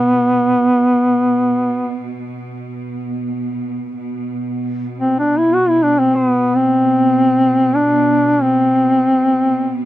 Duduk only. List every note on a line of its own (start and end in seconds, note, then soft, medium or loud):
0.00 2.17 B3 medium
4.98 5.18 C4 medium
5.19 5.39 D4 medium
5.37 5.56 E4 medium
5.54 5.70 F#4 medium
5.69 5.84 E4 medium
5.83 6.00 D4 medium
5.99 6.15 C4 medium
6.15 6.26 C4 medium
6.26 6.57 B3 medium
6.55 7.77 C4 medium
7.76 8.44 D4 medium
8.42 9.85 C4 medium